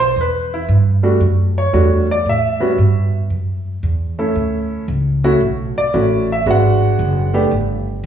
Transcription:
0.00 0.14 B1 medium
0.00 0.16 C5 loud
0.16 0.67 E2 medium
0.21 0.52 B4 medium
0.54 0.63 E4 medium
0.69 1.19 G2 medium
1.03 1.19 G3 medium
1.03 1.19 A3 medium
1.03 1.19 D4 medium
1.03 1.19 F#4 medium
1.21 1.72 F#2 medium
1.58 2.06 C#5 medium
1.73 2.25 E2 medium
1.73 2.05 G3 medium
1.73 2.05 A3 medium
1.73 2.05 D4 medium
1.73 2.05 F#4 medium
2.11 2.27 D5 medium
2.26 2.77 A2 medium
2.26 3.11 E5 medium
2.60 2.76 G3 medium
2.60 2.76 B3 medium
2.60 2.76 C#4 medium
2.60 2.77 F#4 medium
2.78 3.29 G2 medium
3.30 3.82 F#2 medium
3.83 4.34 E2 medium
4.19 4.85 A3 medium
4.19 4.85 C#4 medium
4.19 4.85 E4 medium
4.19 4.85 A4 medium
4.35 4.87 D2 medium
4.88 5.39 C#2 medium
5.24 5.40 A3 medium
5.24 5.40 C#4 medium
5.24 5.40 E4 medium
5.24 5.40 F#4 medium
5.41 5.74 B1 medium
5.76 6.26 D5 medium
5.76 muted upright bass stroke soft
5.94 6.45 A1 medium
5.94 6.25 A3 medium
5.94 6.25 C#4 medium
5.94 6.25 E4 medium
5.94 6.25 F#4 medium
6.32 6.48 E5 medium
6.46 6.97 G#1 medium
6.46 7.27 G#3 medium
6.46 7.27 B3 medium
6.46 7.27 D4 medium
6.46 7.27 F#4 medium
6.51 7.32 F#5 medium
6.99 7.50 F#1 medium
7.34 7.50 A3 medium
7.34 7.50 B3 medium
7.34 7.50 D4 medium
7.34 7.50 G4 medium
7.51 8.03 G1 medium

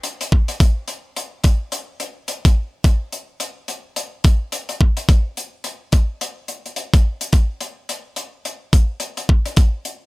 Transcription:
0.03 closed hi-hat medium
0.21 closed hi-hat medium
0.32 kick loud
0.48 closed hi-hat medium
0.60 kick loud
0.60 closed hi-hat medium
0.88 closed hi-hat medium
1.16 closed hi-hat medium
1.44 kick loud
1.44 closed hi-hat medium
1.72 closed hi-hat medium
2.00 closed hi-hat medium
2.28 closed hi-hat medium
2.45 kick loud
2.45 closed hi-hat medium
2.84 kick loud
2.84 closed hi-hat medium
3.12 closed hi-hat medium
3.40 closed hi-hat medium
3.68 closed hi-hat medium
3.96 closed hi-hat medium
4.24 kick loud
4.24 closed hi-hat medium
4.52 closed hi-hat medium
4.69 closed hi-hat medium
4.81 kick loud
4.97 closed hi-hat medium
5.09 kick loud
5.09 closed hi-hat medium
5.37 closed hi-hat medium
5.64 closed hi-hat medium
5.92 kick loud
5.92 closed hi-hat medium
6.21 closed hi-hat medium
6.48 closed hi-hat medium
6.66 closed hi-hat soft
6.76 closed hi-hat medium
6.94 kick loud
6.94 closed hi-hat medium
7.21 closed hi-hat medium
7.33 kick loud
7.33 closed hi-hat medium
7.61 closed hi-hat medium
7.89 closed hi-hat medium
8.16 closed hi-hat medium
8.45 closed hi-hat medium
8.73 kick loud
8.73 closed hi-hat medium
9.00 closed hi-hat medium
9.17 closed hi-hat medium
9.29 kick loud
9.46 closed hi-hat medium
9.56 kick loud
9.56 closed hi-hat medium
9.85 closed hi-hat medium

